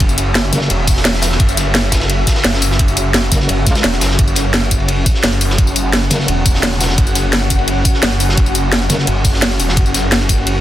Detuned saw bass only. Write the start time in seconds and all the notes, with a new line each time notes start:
Already playing: F#1
0.18 F#1
0.70 E1
1.40 F#1
1.92 F#1
2.44 F#1
2.97 F#1
3.49 F#1
3.84 E1
4.01 F#1
4.19 F#1
4.71 F#1
5.24 F#1
5.76 F#1
6.28 E1
6.98 F#1
7.50 F#1
8.03 F#1
8.55 F#1
9.07 F#1
9.60 E1
9.77 F#1
10.29 F#1